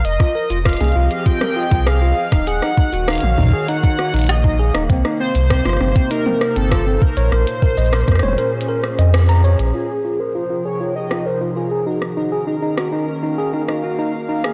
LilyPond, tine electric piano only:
\new Staff \with { instrumentName = "Tine electric piano" } { \time 4/4 \key f \phrygian \tempo 4 = 99 r16 f'16 bes'16 f'16 f'16 aes'16 f'16 r16 f'16 bes'16 f'16 f'16 aes'16 f'16 r16 ees'16 | aes'16 ees'16 ees'16 ges'16 ees'16 r16 ees'16 aes'16 ees'16 ees'16 ges'16 ees'16 r16 ees'16 aes'16 ees'16 | c'16 ees'16 c'16 r16 c'16 f'16 c'16 c'16 ees'16 c'16 r16 c'16 f'16 c'16 bes'16 des''16 | bes'16 r16 bes'16 ees''16 bes'16 bes'16 des''16 bes'16 r16 bes'16 r16 ees''16 r16 bes''16 des''16 r16 |
f'16 r16 f'16 bes'16 f'16 f'16 aes'16 f'16 r16 f'16 bes'16 f'16 f'16 aes'16 ees'16 r16 | ees'16 aes'16 ees'16 ees'16 ges'16 ees'16 r16 ees'16 aes'16 ees'16 ees'16 ges'16 ees'16 r16 ees'16 aes'16 | }